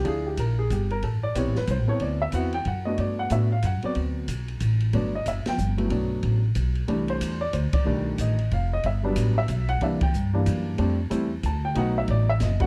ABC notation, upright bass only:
X:1
M:3/4
L:1/8
Q:"Swing" 1/4=184
K:G
V:1 name="Upright bass" clef=bass
D,,2 _B,,,2 G,,,2 | A,,,2 (3B,,, A,,, G,,, (3C,, A,,, G,,, | D,,2 E,,2 F,,2 | G,,2 A,,2 F,, z |
D,,2 B,,,2 A,,,2 | G,,,2 F,,, z G,,,2 | B,,,2 A,,,2 B,,,2 | C,,2 E,,2 D,, z |
B,,,2 A,,,2 =F,,,2 | G,,,2 A,,,2 B,,,2 | C,, z G,,2 F,,2 | =F,,2 E,,2 D,,2 |
B,,,2 A,,,2 F,,,2 |]